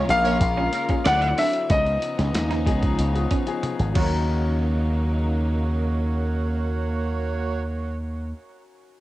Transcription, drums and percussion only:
0.09 closed hi-hat medium
0.25 closed hi-hat medium
0.41 kick medium
0.41 closed hi-hat medium
0.73 closed hi-hat medium
0.89 kick medium
0.89 closed hi-hat medium
1.05 snare loud
1.05 closed hi-hat medium
1.22 closed hi-hat soft
1.38 snare soft
1.38 open hi-hat medium
1.53 closed hi-hat soft
1.70 kick loud
1.70 closed hi-hat medium
1.87 closed hi-hat soft
2.02 closed hi-hat medium
2.19 snare soft
2.19 closed hi-hat soft
2.35 snare loud
2.35 closed hi-hat loud
2.51 snare soft
2.51 closed hi-hat soft
2.66 kick medium
2.66 closed hi-hat medium
2.83 kick medium
2.83 closed hi-hat medium
2.99 closed hi-hat medium
3.16 closed hi-hat soft
3.31 kick medium
3.31 closed hi-hat medium
3.47 closed hi-hat medium
3.63 closed hi-hat medium
3.63 high tom medium
3.79 closed hi-hat soft
3.95 kick loud
3.95 crash medium

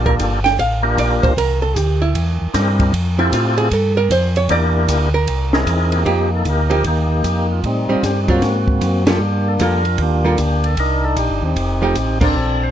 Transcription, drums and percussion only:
0.06 kick medium
0.19 kick soft
0.19 hi-hat pedal medium
0.19 ride medium
0.46 snare soft
0.46 ride medium
0.59 kick soft
0.59 ride medium
0.98 kick soft
0.98 hi-hat pedal medium
0.98 ride medium
1.23 kick medium
1.23 ride medium
1.37 kick soft
1.37 ride medium
1.76 kick soft
1.76 hi-hat pedal medium
1.76 ride medium
2.15 kick soft
2.15 ride medium
2.54 kick soft
2.54 snare soft
2.54 hi-hat pedal medium
2.54 ride medium
2.80 kick medium
2.80 ride medium
2.93 kick soft
2.93 ride medium
3.32 kick soft
3.32 hi-hat pedal medium
3.32 ride medium
3.58 ride medium
3.71 kick soft
3.71 ride medium
4.10 kick soft
4.10 hi-hat pedal medium
4.10 ride medium
4.36 ride medium
4.49 kick soft
4.49 ride medium
4.89 kick soft
4.89 hi-hat pedal medium
4.89 ride medium
5.27 kick soft
5.27 ride medium
5.53 snare medium
5.67 kick soft
5.67 hi-hat pedal medium
5.67 ride medium
5.92 ride medium
6.06 kick soft
6.06 ride medium
6.45 kick soft
6.45 hi-hat pedal medium
6.45 ride medium
6.71 ride soft
6.84 kick soft
6.84 ride medium
7.24 kick soft
7.24 hi-hat pedal medium
7.24 ride medium
7.64 kick soft
7.64 ride soft
8.03 kick soft
8.03 snare soft
8.03 hi-hat pedal soft
8.03 ride medium
8.28 kick soft
8.28 ride soft
8.42 kick soft
8.42 snare soft
8.42 ride medium
8.68 kick medium
8.81 kick soft
8.81 hi-hat pedal medium
8.81 ride medium
9.07 snare medium
9.07 ride medium
9.59 kick soft
9.59 hi-hat pedal medium
9.59 ride medium
9.85 ride soft
9.98 kick soft
9.98 ride medium
10.38 kick soft
10.38 hi-hat pedal soft
10.38 ride medium
10.64 ride soft
10.77 kick soft
10.77 ride medium
11.17 kick soft
11.17 hi-hat pedal medium
11.17 ride medium
11.56 kick soft
11.56 ride medium
11.95 kick soft
11.95 hi-hat pedal medium
11.95 ride medium
12.21 kick medium
12.21 crash medium

